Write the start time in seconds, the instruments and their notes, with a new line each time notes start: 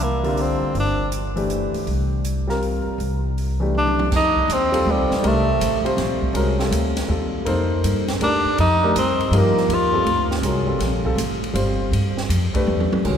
Already playing: upright bass C2
0.03 tenor saxophone A#3
0.23 grand piano D3 G3 C4 F4, open hi-hat
0.37 open hi-hat
0.42 tenor saxophone C4
0.61 muted upright bass stroke
0.75 upright bass G1, open hi-hat
0.80 tenor saxophone D4
1.12 closed hi-hat
1.36 grand piano E3 A3 D4 G4, open hi-hat
1.50 closed hi-hat
1.74 muted upright bass stroke, open hi-hat
1.87 upright bass C2, open hi-hat
2.25 closed hi-hat
2.47 grand piano G3 C4 F4 A#4, snare
2.62 open hi-hat
2.86 muted upright bass stroke
2.98 upright bass C2, open hi-hat
3.38 open hi-hat
3.60 grand piano E3 A3 D4 G4
3.75 tenor saxophone D4, mid tom
3.87 mid tom
3.99 mid tom
4.11 upright bass F2, kick, snare, crash
4.16 tenor saxophone D#4
4.36 kick
4.48 upright bass D#2, hi-hat pedal, ride
4.53 tenor saxophone C4
4.72 grand piano G3 C4 F4 A4, ride
4.86 upright bass D2
4.91 tenor saxophone G3
4.98 upright bass C2
5.10 upright bass A1, snare
5.22 upright bass C2, grand piano A3 D4 G4 A#4, ride
5.28 tenor saxophone A3
5.60 upright bass A1, hi-hat pedal, ride
5.85 grand piano G3 C4 F4 C5, muted upright bass stroke, ride
5.97 upright bass A#1, snare, ride
6.22 muted upright bass stroke, kick
6.33 upright bass C2, grand piano G#3 C#4 F#4 A#4, ride
6.59 grand piano G3 C4 F4 A4, snare
6.70 upright bass D2, hi-hat pedal, ride
6.96 snare, ride
7.08 upright bass D#2, grand piano G3 C4 F4 A4
7.45 upright bass F2, grand piano A#3 D#4 A4 C5, ride
7.84 upright bass G2, hi-hat pedal, ride
8.08 snare, ride
8.20 upright bass A2, grand piano D4 G4 A4 A#4, tenor saxophone D4, ride
8.45 muted upright bass stroke
8.58 upright bass F2, tenor saxophone D#4, ride
8.83 grand piano A3 D4 G4 A#4
8.95 upright bass G2, tenor saxophone C4, hi-hat pedal, ride
9.20 ride
9.31 upright bass G2, grand piano F3 A#3 D#4 G4, ride
9.37 tenor saxophone A#3
9.57 snare
9.68 upright bass D#2, ride
9.74 tenor saxophone F4
9.93 grand piano G3 C4 F4 A4
10.04 upright bass D2, ride
10.31 snare
10.42 upright bass C2, grand piano G#3 C#4 F#4 A#4, hi-hat pedal, ride
10.67 grand piano G3 C4 F4 A4
10.79 upright bass A#1, snare, ride
11.04 grand piano G3 C4 F4 A4, kick
11.16 upright bass A1, hi-hat pedal, ride
11.44 ride
11.54 upright bass G1, grand piano G3 C4 F4 C5, ride
11.92 upright bass G2, ride
12.17 snare
12.29 upright bass F2, hi-hat pedal, ride
12.54 grand piano A3 D4 G4 B4, muted upright bass stroke, kick, ride
12.67 upright bass E2, mid tom
12.80 mid tom
12.92 muted upright bass stroke, mid tom
13.05 upright bass C2, grand piano D#3 G#3 C#4 F#4, kick, crash